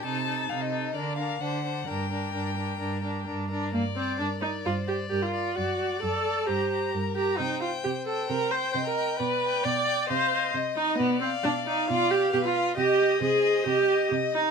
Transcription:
X:1
M:4/4
L:1/16
Q:1/4=133
K:Gm
V:1 name="Violin"
a4 f e3 d2 f2 ^f4 | g12 z4 | d4 B4 c4 B4 | d8 c4 B4 |
c12 e4 | d8 f4 e4 | [K:Cm] d8 d4 =B4 | e4 c4 e4 e4 |]
V:2 name="Violin"
A2 A2 A2 A2 B2 B2 c2 c2 | B2 B2 B2 B2 B2 B2 B2 B2 | z2 d4 d4 d4 d2 | d2 d4 d2 b2 b4 b2 |
g2 g4 g4 g4 g2 | z2 g4 g2 e2 e4 e2 | [K:Cm] z2 f4 f4 f4 f2 | e2 e4 e4 e4 e2 |]
V:3 name="Viola"
E2 E2 E2 E2 D2 D2 D2 D2 | D2 D2 D2 D2 D2 D2 D2 D2 | B,2 C2 D2 E2 F2 G2 G F3 | ^F4 A4 G4 z2 G2 |
E2 F2 G2 A2 B2 c2 c B3 | =B4 d4 c4 z2 E2 | [K:Cm] =B,2 C2 D2 E2 F2 G2 G F3 | G4 A4 G4 z2 E2 |]
V:4 name="Cello" clef=bass
C,4 C,4 D,4 D,4 | G,,4 G,,4 G,,4 G,,4 | G,,4 G,,4 G,,4 G,,4 | ^F,,4 F,,4 G,,4 G,,4 |
C,4 C,4 C,4 C,4 | =B,,4 B,,4 C,4 C,4 | [K:Cm] =B,,4 B,,4 B,,4 B,,4 | C,4 C,4 C,4 C,4 |]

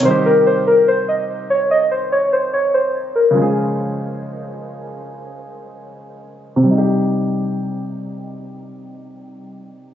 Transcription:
X:1
M:4/4
L:1/8
Q:1/4=145
K:Cphr
V:1 name="Synth keys"
c B c B c e2 d | e c d c d c2 B | z8 | z8 |
z8 | z8 |]
V:2 name="Grand piano" clef=bass
[C,E,G,EG]8- | [C,E,G,EG]8 | [D,F,A,FA]8- | [D,F,A,FA]8 |
[C,G,EG]8- | [C,G,EG]8 |]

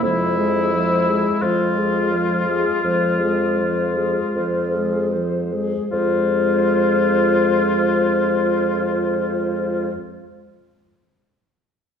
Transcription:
X:1
M:4/4
L:1/16
Q:1/4=39
K:Fm
V:1 name="Flute"
c A c A c A c A c A c A c A c A | c16 |]
V:2 name="Oboe"
=E4 F8- F2 z2 | F16 |]
V:3 name="Clarinet"
A,12- A,2 z2 | F16 |]
V:4 name="French horn" clef=bass
F, A, F, A, F, A, F, A, F, A, F, A, F, A, F, A, | A,16 |]
V:5 name="Bassoon" clef=bass
F,,4 F,,4 F,,4 F,,4 | F,,16 |]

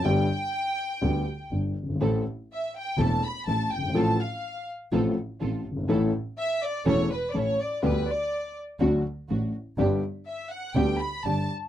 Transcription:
X:1
M:4/4
L:1/16
Q:1/4=123
K:G
V:1 name="Violin section"
g12 z4 | z4 e2 g2 a2 b2 a2 g2 | a2 =f4 z8 z2 | z4 e2 d2 ^c2 B3/2 d/2 c2 d2 |
B2 d4 z8 z2 | z4 e2 f2 g2 b2 a2 z2 |]
V:2 name="String section"
z16 | [CEA]2 z6 [CEA]2 z2 [CEA]2 z2 | [C=FA]2 z6 [CFA]2 z2 [CFA]2 z2 | [^CEA]2 z6 [CEA]2 z2 [CEA]2 z2 |
[B,DG]2 z6 [A,DF]2 z2 [A,DF]2 z2 | [B,DG]2 z6 [B,DG]2 z2 [B,DG]2 z2 |]
V:3 name="Grand piano" clef=bass
[G,,,G,,D,G,B,G]2 z6 [D,,D,G,B,G]2 z2 [G,,,G,,]2 z/2 F,,,/2 G,,,/2 _A,,,/2 | [A,,,A,,E,A,CA]2 z6 [E,,,E,,E,A,CA]2 z2 [A,,,A,,]2 z/2 F,,,/2 G,,,/2 _A,,,/2 | [A,,,A,,=F,A,CA]2 z6 [A,,,A,,F,A,CA]2 z2 [A,,,A,,]2 z/2 ^F,,,/2 G,,,/2 _A,,,/2 | [A,,,A,,E,A,^CA]2 z6 [E,,,E,,E,A,CA]2 z2 [A,,,A,,]2 z2 |
[D,,D,G,B,G]2 z6 [D,,D,F,A,F]2 z2 [A,,,A,,]2 z2 | [G,,,G,,D,G,B,G]2 z6 [D,,D,G,B,G]2 z2 [G,,,G,,]2 z2 |]
V:4 name="Double bass" clef=bass
G,,,2 z6 D,,2 z2 G,,,2 G,,,2 | A,,,2 z6 E,,,2 z2 A,,,2 G,,,2 | A,,,2 z6 A,,,2 z2 A,,,2 G,,,2 | A,,,2 z6 E,,,2 z2 A,,,2 z2 |
D,,2 z6 D,,2 z2 A,,,2 z2 | G,,,2 z6 D,,2 z2 G,,,2 z2 |]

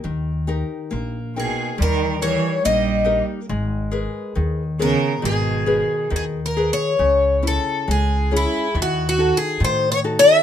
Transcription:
X:1
M:2/4
L:1/16
Q:1/4=69
K:G#m
V:1 name="Twelve-string acoustic guitar"
z6 G2 | A2 c2 d3 z | z6 A2 | G4 (3G2 A2 c2- |
[K:C#m] c2 A2 G2 E2 | (3F2 F2 G2 (3^B2 c2 e2 |]
V:2 name="Nylon-string guitar"
[D,D=GA]2 [DGA]2 A,2 [DA=g]2 | =G,2 [D=GA]2 A,2 [DGA]2 | G,2 [GAB]2 D,2 [B,GA]2 | D,2 [GAB]2 D,2 [GAB]2 |
[K:C#m] C,2 [CE]2 G,2 [CEG]2 | D,2 [DFA]2 D,2 [DFA]2 |]
V:3 name="Cello" clef=bass
z6 B,,2 | D,2 E,2 =G,3 z | z6 C,2 | B,,4 z4 |
[K:C#m] z8 | z8 |]
V:4 name="Upright bass" clef=bass
D,,4 A,,,4 | D,,4 A,,,4 | G,,,4 D,,4 | G,,,4 D,,4 |
[K:C#m] C,,4 C,,4 | D,,4 A,,4 |]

